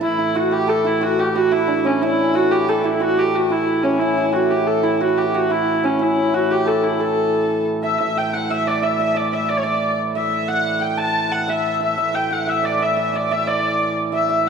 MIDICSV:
0, 0, Header, 1, 4, 480
1, 0, Start_track
1, 0, Tempo, 332042
1, 30, Time_signature, 6, 3, 24, 8
1, 20948, End_track
2, 0, Start_track
2, 0, Title_t, "Hammered dulcimer"
2, 0, Program_c, 0, 15
2, 13, Note_on_c, 0, 64, 70
2, 260, Note_off_c, 0, 64, 0
2, 266, Note_on_c, 0, 64, 67
2, 506, Note_on_c, 0, 66, 78
2, 741, Note_on_c, 0, 67, 76
2, 827, Note_off_c, 0, 66, 0
2, 972, Note_on_c, 0, 69, 71
2, 1215, Note_off_c, 0, 64, 0
2, 1221, Note_on_c, 0, 64, 73
2, 1462, Note_on_c, 0, 66, 78
2, 1549, Note_off_c, 0, 67, 0
2, 1716, Note_on_c, 0, 67, 72
2, 1803, Note_off_c, 0, 66, 0
2, 1957, Note_on_c, 0, 66, 71
2, 2044, Note_off_c, 0, 67, 0
2, 2183, Note_off_c, 0, 64, 0
2, 2188, Note_on_c, 0, 64, 70
2, 2423, Note_on_c, 0, 62, 65
2, 2670, Note_on_c, 0, 61, 61
2, 2756, Note_off_c, 0, 62, 0
2, 2921, Note_off_c, 0, 64, 0
2, 2927, Note_on_c, 0, 64, 79
2, 3373, Note_off_c, 0, 66, 0
2, 3379, Note_on_c, 0, 66, 75
2, 3643, Note_on_c, 0, 67, 74
2, 3730, Note_off_c, 0, 66, 0
2, 3876, Note_off_c, 0, 69, 0
2, 3881, Note_on_c, 0, 69, 79
2, 4096, Note_off_c, 0, 64, 0
2, 4101, Note_on_c, 0, 64, 70
2, 4340, Note_on_c, 0, 66, 66
2, 4427, Note_off_c, 0, 67, 0
2, 4586, Note_on_c, 0, 67, 77
2, 4673, Note_off_c, 0, 66, 0
2, 5052, Note_off_c, 0, 64, 0
2, 5058, Note_on_c, 0, 64, 63
2, 5547, Note_off_c, 0, 61, 0
2, 5553, Note_on_c, 0, 61, 63
2, 5791, Note_off_c, 0, 64, 0
2, 5797, Note_on_c, 0, 64, 65
2, 6030, Note_off_c, 0, 64, 0
2, 6036, Note_on_c, 0, 64, 66
2, 6238, Note_off_c, 0, 67, 0
2, 6244, Note_on_c, 0, 67, 53
2, 6299, Note_on_c, 0, 66, 70
2, 6386, Note_off_c, 0, 67, 0
2, 6530, Note_on_c, 0, 67, 69
2, 6616, Note_off_c, 0, 66, 0
2, 6978, Note_off_c, 0, 64, 0
2, 6984, Note_on_c, 0, 64, 65
2, 7235, Note_on_c, 0, 66, 73
2, 7322, Note_off_c, 0, 67, 0
2, 7478, Note_on_c, 0, 67, 63
2, 7565, Note_off_c, 0, 66, 0
2, 7723, Note_on_c, 0, 66, 73
2, 7809, Note_off_c, 0, 67, 0
2, 7942, Note_off_c, 0, 64, 0
2, 7948, Note_on_c, 0, 64, 60
2, 8114, Note_off_c, 0, 69, 0
2, 8433, Note_off_c, 0, 61, 0
2, 8439, Note_on_c, 0, 61, 64
2, 8653, Note_off_c, 0, 64, 0
2, 8659, Note_on_c, 0, 64, 69
2, 9158, Note_off_c, 0, 66, 0
2, 9164, Note_on_c, 0, 66, 69
2, 9404, Note_on_c, 0, 67, 73
2, 9491, Note_off_c, 0, 66, 0
2, 9624, Note_on_c, 0, 69, 65
2, 10097, Note_off_c, 0, 69, 0
2, 10103, Note_on_c, 0, 69, 63
2, 11323, Note_on_c, 0, 76, 65
2, 11566, Note_off_c, 0, 76, 0
2, 11572, Note_on_c, 0, 76, 73
2, 11804, Note_on_c, 0, 79, 68
2, 12053, Note_on_c, 0, 78, 72
2, 12139, Note_off_c, 0, 67, 0
2, 12139, Note_off_c, 0, 79, 0
2, 12282, Note_off_c, 0, 76, 0
2, 12288, Note_on_c, 0, 76, 74
2, 12534, Note_on_c, 0, 74, 59
2, 12621, Note_off_c, 0, 61, 0
2, 12748, Note_off_c, 0, 76, 0
2, 12754, Note_on_c, 0, 76, 71
2, 12993, Note_off_c, 0, 76, 0
2, 12999, Note_on_c, 0, 76, 70
2, 13216, Note_off_c, 0, 74, 0
2, 13222, Note_on_c, 0, 74, 64
2, 13481, Note_off_c, 0, 76, 0
2, 13487, Note_on_c, 0, 76, 72
2, 13693, Note_off_c, 0, 64, 0
2, 13722, Note_off_c, 0, 74, 0
2, 13728, Note_on_c, 0, 74, 65
2, 13915, Note_off_c, 0, 74, 0
2, 13921, Note_on_c, 0, 74, 74
2, 14336, Note_off_c, 0, 69, 0
2, 14669, Note_off_c, 0, 76, 0
2, 14675, Note_on_c, 0, 76, 75
2, 15149, Note_off_c, 0, 78, 0
2, 15155, Note_on_c, 0, 78, 75
2, 15610, Note_on_c, 0, 79, 78
2, 15696, Note_off_c, 0, 78, 0
2, 15861, Note_on_c, 0, 81, 87
2, 16320, Note_on_c, 0, 78, 72
2, 16407, Note_off_c, 0, 79, 0
2, 16586, Note_off_c, 0, 76, 0
2, 16592, Note_on_c, 0, 76, 74
2, 17058, Note_off_c, 0, 76, 0
2, 17063, Note_on_c, 0, 76, 71
2, 17307, Note_off_c, 0, 76, 0
2, 17313, Note_on_c, 0, 76, 76
2, 17481, Note_off_c, 0, 74, 0
2, 17545, Note_on_c, 0, 79, 70
2, 17631, Note_off_c, 0, 78, 0
2, 17790, Note_on_c, 0, 78, 76
2, 17877, Note_off_c, 0, 79, 0
2, 18017, Note_off_c, 0, 76, 0
2, 18022, Note_on_c, 0, 76, 72
2, 18255, Note_on_c, 0, 74, 63
2, 18491, Note_off_c, 0, 76, 0
2, 18497, Note_on_c, 0, 76, 72
2, 18653, Note_off_c, 0, 81, 0
2, 18741, Note_off_c, 0, 76, 0
2, 18746, Note_on_c, 0, 76, 67
2, 18984, Note_off_c, 0, 74, 0
2, 18990, Note_on_c, 0, 74, 66
2, 19232, Note_off_c, 0, 76, 0
2, 19238, Note_on_c, 0, 76, 70
2, 19469, Note_off_c, 0, 74, 0
2, 19475, Note_on_c, 0, 74, 67
2, 20409, Note_off_c, 0, 76, 0
2, 20415, Note_on_c, 0, 76, 73
2, 20654, Note_off_c, 0, 76, 0
2, 20660, Note_on_c, 0, 76, 72
2, 20889, Note_off_c, 0, 78, 0
2, 20948, Note_off_c, 0, 74, 0
2, 20948, Note_off_c, 0, 76, 0
2, 20948, End_track
3, 0, Start_track
3, 0, Title_t, "Hurdy-gurdy"
3, 0, Program_c, 1, 110
3, 56, Note_on_c, 1, 64, 93
3, 523, Note_off_c, 1, 64, 0
3, 523, Note_on_c, 1, 66, 84
3, 768, Note_off_c, 1, 66, 0
3, 768, Note_on_c, 1, 67, 102
3, 1002, Note_off_c, 1, 67, 0
3, 1002, Note_on_c, 1, 69, 90
3, 1255, Note_off_c, 1, 69, 0
3, 1255, Note_on_c, 1, 64, 81
3, 1490, Note_off_c, 1, 64, 0
3, 1490, Note_on_c, 1, 66, 93
3, 1732, Note_off_c, 1, 66, 0
3, 1732, Note_on_c, 1, 67, 90
3, 1962, Note_off_c, 1, 67, 0
3, 1962, Note_on_c, 1, 66, 96
3, 2203, Note_off_c, 1, 66, 0
3, 2203, Note_on_c, 1, 64, 87
3, 2690, Note_off_c, 1, 64, 0
3, 2690, Note_on_c, 1, 61, 76
3, 2920, Note_off_c, 1, 61, 0
3, 2920, Note_on_c, 1, 64, 90
3, 3402, Note_off_c, 1, 64, 0
3, 3402, Note_on_c, 1, 66, 89
3, 3636, Note_off_c, 1, 66, 0
3, 3636, Note_on_c, 1, 67, 84
3, 3887, Note_off_c, 1, 67, 0
3, 3887, Note_on_c, 1, 69, 82
3, 4122, Note_on_c, 1, 64, 73
3, 4123, Note_off_c, 1, 69, 0
3, 4361, Note_off_c, 1, 64, 0
3, 4361, Note_on_c, 1, 66, 99
3, 4604, Note_off_c, 1, 66, 0
3, 4604, Note_on_c, 1, 67, 87
3, 4848, Note_off_c, 1, 67, 0
3, 4848, Note_on_c, 1, 66, 83
3, 5084, Note_off_c, 1, 66, 0
3, 5084, Note_on_c, 1, 64, 86
3, 5542, Note_off_c, 1, 64, 0
3, 5542, Note_on_c, 1, 61, 65
3, 5770, Note_on_c, 1, 64, 82
3, 5774, Note_off_c, 1, 61, 0
3, 6261, Note_on_c, 1, 66, 83
3, 6265, Note_off_c, 1, 64, 0
3, 6512, Note_off_c, 1, 66, 0
3, 6512, Note_on_c, 1, 67, 86
3, 6751, Note_on_c, 1, 69, 78
3, 6756, Note_off_c, 1, 67, 0
3, 6993, Note_off_c, 1, 69, 0
3, 6993, Note_on_c, 1, 64, 69
3, 7246, Note_off_c, 1, 64, 0
3, 7246, Note_on_c, 1, 66, 93
3, 7483, Note_off_c, 1, 66, 0
3, 7483, Note_on_c, 1, 67, 90
3, 7727, Note_off_c, 1, 67, 0
3, 7727, Note_on_c, 1, 66, 80
3, 7975, Note_off_c, 1, 66, 0
3, 7975, Note_on_c, 1, 64, 88
3, 8457, Note_off_c, 1, 64, 0
3, 8457, Note_on_c, 1, 61, 68
3, 8703, Note_off_c, 1, 61, 0
3, 8703, Note_on_c, 1, 64, 84
3, 9166, Note_off_c, 1, 64, 0
3, 9166, Note_on_c, 1, 66, 82
3, 9415, Note_off_c, 1, 66, 0
3, 9415, Note_on_c, 1, 67, 87
3, 9653, Note_off_c, 1, 67, 0
3, 9653, Note_on_c, 1, 69, 87
3, 9885, Note_off_c, 1, 69, 0
3, 9885, Note_on_c, 1, 64, 72
3, 10126, Note_off_c, 1, 64, 0
3, 10126, Note_on_c, 1, 69, 82
3, 11084, Note_off_c, 1, 69, 0
3, 11323, Note_on_c, 1, 76, 66
3, 11569, Note_off_c, 1, 76, 0
3, 11569, Note_on_c, 1, 76, 88
3, 11823, Note_off_c, 1, 76, 0
3, 11823, Note_on_c, 1, 79, 84
3, 12047, Note_on_c, 1, 78, 93
3, 12052, Note_off_c, 1, 79, 0
3, 12297, Note_off_c, 1, 78, 0
3, 12297, Note_on_c, 1, 76, 88
3, 12543, Note_off_c, 1, 76, 0
3, 12543, Note_on_c, 1, 74, 83
3, 12767, Note_off_c, 1, 74, 0
3, 12767, Note_on_c, 1, 76, 68
3, 13015, Note_off_c, 1, 76, 0
3, 13015, Note_on_c, 1, 76, 92
3, 13256, Note_off_c, 1, 76, 0
3, 13256, Note_on_c, 1, 74, 81
3, 13493, Note_off_c, 1, 74, 0
3, 13493, Note_on_c, 1, 76, 78
3, 13716, Note_off_c, 1, 76, 0
3, 13716, Note_on_c, 1, 74, 80
3, 13836, Note_off_c, 1, 74, 0
3, 13836, Note_on_c, 1, 73, 73
3, 13926, Note_on_c, 1, 74, 83
3, 13929, Note_off_c, 1, 73, 0
3, 14442, Note_off_c, 1, 74, 0
3, 14698, Note_on_c, 1, 76, 85
3, 15146, Note_off_c, 1, 76, 0
3, 15146, Note_on_c, 1, 78, 97
3, 15634, Note_off_c, 1, 78, 0
3, 15634, Note_on_c, 1, 79, 85
3, 15868, Note_on_c, 1, 81, 109
3, 15876, Note_off_c, 1, 79, 0
3, 16363, Note_off_c, 1, 81, 0
3, 16363, Note_on_c, 1, 78, 95
3, 16620, Note_off_c, 1, 78, 0
3, 16620, Note_on_c, 1, 76, 94
3, 17091, Note_off_c, 1, 76, 0
3, 17091, Note_on_c, 1, 76, 75
3, 17322, Note_off_c, 1, 76, 0
3, 17322, Note_on_c, 1, 76, 93
3, 17567, Note_off_c, 1, 76, 0
3, 17567, Note_on_c, 1, 79, 93
3, 17818, Note_off_c, 1, 79, 0
3, 17818, Note_on_c, 1, 78, 85
3, 18057, Note_off_c, 1, 78, 0
3, 18057, Note_on_c, 1, 76, 81
3, 18290, Note_off_c, 1, 76, 0
3, 18290, Note_on_c, 1, 74, 79
3, 18542, Note_off_c, 1, 74, 0
3, 18542, Note_on_c, 1, 76, 69
3, 18765, Note_off_c, 1, 76, 0
3, 18765, Note_on_c, 1, 76, 80
3, 19020, Note_off_c, 1, 76, 0
3, 19020, Note_on_c, 1, 74, 76
3, 19253, Note_off_c, 1, 74, 0
3, 19253, Note_on_c, 1, 76, 82
3, 19481, Note_off_c, 1, 76, 0
3, 19481, Note_on_c, 1, 74, 84
3, 20145, Note_off_c, 1, 74, 0
3, 20453, Note_on_c, 1, 76, 86
3, 20929, Note_off_c, 1, 76, 0
3, 20948, End_track
4, 0, Start_track
4, 0, Title_t, "Harmonium"
4, 0, Program_c, 2, 20
4, 46, Note_on_c, 2, 45, 61
4, 48, Note_on_c, 2, 52, 64
4, 5770, Note_off_c, 2, 45, 0
4, 5778, Note_off_c, 2, 52, 0
4, 5792, Note_on_c, 2, 45, 56
4, 5800, Note_on_c, 2, 52, 66
4, 11530, Note_off_c, 2, 45, 0
4, 11536, Note_off_c, 2, 52, 0
4, 11551, Note_on_c, 2, 45, 61
4, 11558, Note_on_c, 2, 52, 65
4, 17285, Note_off_c, 2, 52, 0
4, 17293, Note_off_c, 2, 45, 0
4, 17307, Note_on_c, 2, 52, 61
4, 17315, Note_on_c, 2, 45, 65
4, 20948, Note_off_c, 2, 45, 0
4, 20948, Note_off_c, 2, 52, 0
4, 20948, End_track
0, 0, End_of_file